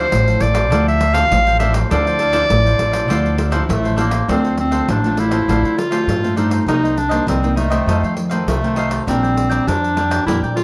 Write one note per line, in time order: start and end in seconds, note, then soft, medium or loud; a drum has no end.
0.00 0.36 F3 medium
0.00 0.37 C4 medium
0.00 0.37 E4 medium
0.00 0.43 C5 loud
0.11 0.38 A1 loud
0.11 0.68 A2 medium
0.11 pandeiro medium
0.28 0.55 A4 soft
0.28 0.54 C5 soft
0.28 0.53 F5 soft
0.28 pandeiro soft
0.40 0.72 A1 medium
0.40 0.59 F3 medium
0.40 0.59 C4 medium
0.40 0.59 E4 medium
0.40 0.86 D5 medium
0.40 pandeiro medium
0.54 0.70 A4 soft
0.54 0.70 C5 medium
0.54 0.69 F5 medium
0.54 pandeiro medium
0.70 1.23 D2 loud
0.70 1.29 D3 medium
0.70 1.00 F3 medium
0.70 1.00 C4 medium
0.70 0.97 D4 medium
0.70 1.00 E4 medium
0.70 0.98 A4 medium
0.70 0.99 C5 medium
0.70 0.99 F5 medium
0.70 pandeiro medium
0.88 1.15 E5 loud
0.88 pandeiro soft
0.99 1.12 D4 soft
0.99 1.12 A4 soft
0.99 1.13 C5 soft
0.99 1.13 F5 medium
0.99 pandeiro medium
1.13 1.55 F3 medium
1.13 1.55 C4 medium
1.13 1.23 D4 medium
1.13 1.24 A4 medium
1.13 1.24 C5 medium
1.13 1.59 F5 loud
1.13 1.24 F5 medium
1.13 pandeiro medium
1.31 1.82 A1 loud
1.31 1.88 A2 medium
1.31 pandeiro medium
1.46 1.59 A4 soft
1.46 1.59 C5 soft
1.46 1.60 F5 medium
1.46 pandeiro soft
1.59 1.86 F3 medium
1.59 1.86 C4 medium
1.59 1.74 D4 medium
1.59 1.86 E4 medium
1.59 1.74 A4 medium
1.59 1.74 C5 medium
1.59 1.73 E5 medium
1.59 1.73 F5 medium
1.59 pandeiro medium
1.74 1.90 A4 soft
1.74 1.89 C5 medium
1.74 1.89 F5 medium
1.74 pandeiro medium
1.91 2.42 D2 medium
1.91 2.48 D3 medium
1.91 2.19 F3 medium
1.91 2.19 C4 medium
1.91 2.04 D4 medium
1.91 2.19 E4 medium
1.91 2.05 A4 medium
1.91 2.05 C5 medium
1.91 3.66 D5 loud
1.91 2.05 F5 medium
1.91 pandeiro medium
2.06 2.19 A4 medium
2.06 2.20 C5 medium
2.06 2.20 F5 medium
2.06 pandeiro soft
2.19 2.32 D4 medium
2.19 2.32 A4 medium
2.19 2.32 C5 medium
2.19 2.32 F5 medium
2.19 pandeiro medium
2.33 2.74 F3 medium
2.33 2.74 C4 medium
2.33 2.43 D4 medium
2.33 2.74 E4 medium
2.33 2.43 A4 medium
2.33 2.43 C5 medium
2.33 2.43 F5 medium
2.33 pandeiro medium
2.50 2.76 A1 loud
2.50 3.07 A2 medium
2.50 pandeiro medium
2.65 2.92 A4 soft
2.65 2.92 C5 soft
2.65 2.90 F5 medium
2.65 pandeiro soft
2.79 3.10 A1 medium
2.79 3.05 F3 medium
2.79 3.05 C4 medium
2.79 3.05 E4 medium
2.79 pandeiro medium
2.92 3.07 A4 soft
2.92 3.08 C5 soft
2.92 3.07 F5 medium
2.92 pandeiro medium
3.08 3.60 D2 loud
3.08 3.67 D3 medium
3.08 3.50 F3 medium
3.08 3.50 C4 medium
3.08 3.36 D4 medium
3.08 3.50 E4 medium
3.08 3.37 A4 medium
3.08 3.37 C5 medium
3.08 3.38 F5 medium
3.08 pandeiro medium
3.26 pandeiro soft
3.37 3.50 D4 soft
3.37 3.50 A4 soft
3.37 3.51 C5 soft
3.37 3.51 F5 medium
3.37 pandeiro medium
3.51 3.94 F3 medium
3.51 3.94 C4 medium
3.51 3.62 D4 medium
3.51 3.94 E4 medium
3.51 3.62 A4 medium
3.51 3.62 C5 medium
3.51 3.62 F5 medium
3.51 pandeiro medium
3.69 4.20 A1 loud
3.69 4.26 A2 medium
3.69 4.03 A3 medium
3.69 pandeiro medium
3.84 3.96 A4 soft
3.84 3.96 C5 soft
3.84 3.97 F5 medium
3.84 pandeiro soft
3.96 4.16 F3 medium
3.96 4.17 C4 medium
3.96 4.12 D4 medium
3.96 4.17 E4 medium
3.96 4.12 A4 medium
3.96 4.11 C5 medium
3.96 4.10 F5 medium
3.96 pandeiro medium
4.01 4.30 A#3 medium
4.11 4.27 A4 soft
4.11 4.27 C5 soft
4.11 4.26 F5 soft
4.11 pandeiro medium
4.28 4.80 D2 loud
4.28 4.86 D3 medium
4.28 4.69 A3 soft
4.28 4.69 C4 medium
4.28 4.58 C4 medium
4.28 4.42 D4 medium
4.28 4.70 F4 medium
4.28 4.43 A4 medium
4.28 4.43 C5 medium
4.28 4.43 F5 medium
4.28 pandeiro medium
4.44 4.56 A4 soft
4.44 4.56 C5 soft
4.44 4.57 F5 soft
4.44 pandeiro soft
4.57 4.92 C4 medium
4.57 muted cavaquinho stroke soft
4.57 pandeiro medium
4.71 4.98 A3 medium
4.71 4.98 C4 medium
4.71 4.99 F4 medium
4.71 4.87 A4 medium
4.71 4.87 C5 medium
4.71 4.86 F5 medium
4.71 pandeiro medium
4.88 5.39 A1 loud
4.88 5.46 A2 medium
4.88 5.16 D4 soft
4.88 5.21 D4 medium
4.88 5.17 A4 soft
4.88 5.17 C5 medium
4.88 5.18 F5 medium
4.88 pandeiro medium
5.04 5.29 A3 medium
5.04 5.30 C4 medium
5.04 5.30 F4 medium
5.04 pandeiro soft
5.17 5.32 D4 soft
5.17 5.80 E4 medium
5.17 5.32 A4 soft
5.17 5.31 C5 soft
5.17 5.30 F5 medium
5.17 pandeiro medium
5.31 5.43 A3 medium
5.31 5.43 C4 medium
5.31 5.43 F4 medium
5.31 5.47 A4 medium
5.31 5.46 C5 medium
5.31 5.46 F5 medium
5.31 pandeiro medium
5.48 5.61 A1 medium
5.48 6.05 D3 medium
5.48 5.77 A3 medium
5.48 5.77 C4 medium
5.48 5.62 D4 medium
5.48 5.77 F4 medium
5.48 5.62 A4 medium
5.48 5.63 C5 medium
5.48 5.62 F5 medium
5.48 pandeiro medium
5.63 6.01 D3 medium
5.63 5.76 A4 soft
5.63 5.76 C5 soft
5.63 5.76 F5 medium
5.63 pandeiro soft
5.77 6.37 F4 loud
5.77 muted cavaquinho stroke soft
5.77 pandeiro medium
5.91 6.17 A3 medium
5.91 6.18 C4 medium
5.91 6.18 F4 medium
5.91 6.22 A4 medium
5.91 6.21 C5 medium
5.91 6.21 F5 medium
5.91 pandeiro medium
6.07 6.58 G2 medium
6.07 6.65 A2 medium
6.07 pandeiro medium
6.23 6.64 A3 medium
6.23 6.64 C4 medium
6.23 6.64 F4 medium
6.23 6.36 A4 soft
6.23 6.36 C5 soft
6.23 6.37 F5 medium
6.23 pandeiro soft
6.36 6.51 D4 medium
6.36 6.65 D#4 medium
6.36 6.51 A4 medium
6.36 6.50 C5 medium
6.36 6.49 F5 medium
6.36 pandeiro medium
6.50 6.67 A4 soft
6.50 6.66 C5 soft
6.50 6.65 F5 soft
6.50 pandeiro medium
6.66 7.18 C2 medium
6.66 7.24 C3 medium
6.66 6.96 G3 medium
6.66 6.96 A#3 medium
6.66 6.99 D#4 loud
6.66 6.82 D#4 medium
6.66 6.96 D#4 medium
6.66 6.82 A#4 medium
6.66 6.82 C5 medium
6.66 6.82 D#5 medium
6.66 pandeiro medium
6.83 6.95 A#4 soft
6.83 6.96 C5 soft
6.83 6.96 D#5 soft
6.83 pandeiro soft
6.96 7.28 D4 medium
6.96 muted cavaquinho stroke soft
6.96 pandeiro medium
7.09 7.37 G3 medium
7.09 7.37 A#3 medium
7.09 7.38 D#4 medium
7.09 7.26 A#4 medium
7.09 7.25 C5 medium
7.09 7.25 D#5 medium
7.09 pandeiro medium
7.27 7.78 C2 loud
7.27 7.84 G2 medium
7.27 7.56 C4 medium
7.27 7.54 D#4 soft
7.27 7.55 A#4 soft
7.27 7.55 C5 medium
7.27 7.56 D#5 medium
7.27 pandeiro medium
7.43 7.68 G3 medium
7.43 7.68 A#3 medium
7.43 7.68 D#4 medium
7.43 pandeiro soft
7.55 8.16 A3 medium
7.55 7.70 D#4 soft
7.55 7.70 A#4 medium
7.55 7.70 C5 soft
7.55 7.69 D#5 medium
7.55 pandeiro medium
7.70 8.27 D#3 medium
7.70 8.27 A3 medium
7.70 8.27 C4 medium
7.70 7.86 A#4 medium
7.70 7.85 C5 medium
7.70 7.85 D#5 medium
7.70 pandeiro medium
7.86 8.00 F2 medium
7.86 8.44 F2 medium
7.86 8.01 D#4 medium
7.86 8.01 A4 medium
7.86 8.02 C5 medium
7.86 8.02 F5 medium
7.86 pandeiro medium
8.03 8.41 F3 medium
8.03 8.15 A4 soft
8.03 8.16 C5 soft
8.03 8.16 F5 medium
8.03 pandeiro soft
8.16 muted cavaquinho stroke soft
8.16 pandeiro medium
8.29 8.57 D#3 medium
8.29 8.57 A3 medium
8.29 8.57 C4 medium
8.29 8.61 A4 medium
8.29 8.60 C5 medium
8.29 8.60 F5 medium
8.29 pandeiro medium
8.47 8.98 C2 medium
8.47 9.05 C3 medium
8.47 9.03 A3 medium
8.47 pandeiro medium
8.63 9.03 D#3 medium
8.63 9.03 A3 medium
8.63 9.04 C4 medium
8.63 8.76 A4 soft
8.63 8.76 C5 soft
8.63 8.76 F5 medium
8.63 pandeiro soft
8.76 8.91 D#4 medium
8.76 8.91 A4 medium
8.76 8.90 C5 medium
8.76 8.89 F5 medium
8.76 pandeiro medium
8.90 9.06 A4 soft
8.90 9.05 C5 soft
8.90 9.05 F5 medium
8.90 pandeiro medium
9.07 9.58 A#1 loud
9.07 9.65 A#2 medium
9.07 9.48 G3 medium
9.07 9.69 C4 medium
9.07 9.48 C4 medium
9.07 9.21 D4 medium
9.07 9.48 D4 medium
9.07 9.21 A#4 medium
9.07 9.22 D5 medium
9.07 9.22 G5 medium
9.07 pandeiro medium
9.23 9.35 A#4 soft
9.23 9.36 D5 soft
9.23 9.36 G5 soft
9.23 pandeiro soft
9.37 muted cavaquinho stroke soft
9.37 pandeiro medium
9.49 9.91 G3 medium
9.49 9.92 C4 medium
9.49 9.92 D4 medium
9.49 9.65 A#4 medium
9.49 9.65 D5 medium
9.49 9.65 G5 medium
9.49 pandeiro medium
9.67 10.18 F2 loud
9.67 10.24 F3 medium
9.67 9.95 D4 medium
9.67 10.26 D4 medium
9.67 9.95 A#4 medium
9.67 9.96 D5 soft
9.67 9.97 G5 medium
9.67 pandeiro medium
9.84 pandeiro soft
9.96 10.14 G3 medium
9.96 10.15 C4 medium
9.96 10.10 D4 soft
9.96 10.15 D4 medium
9.96 10.11 A#4 medium
9.96 10.10 D5 medium
9.96 10.09 G5 medium
9.96 pandeiro medium
10.11 10.26 A#4 medium
10.11 10.25 D5 medium
10.11 10.25 G5 medium
10.11 pandeiro medium
10.26 10.39 F2 medium
10.26 10.64 A#2 medium
10.26 10.55 G3 soft
10.26 10.56 C4 medium
10.26 10.41 D4 medium
10.26 10.56 D4 medium
10.26 10.40 E4 medium
10.26 10.41 A#4 medium
10.26 10.41 D5 medium
10.26 10.42 G5 medium
10.26 pandeiro medium
10.43 10.64 A#2 medium
10.43 10.55 A#4 soft
10.43 10.56 D5 medium
10.43 10.56 G5 medium
10.43 pandeiro soft
10.56 10.64 F4 loud
10.56 muted cavaquinho stroke soft
10.56 pandeiro medium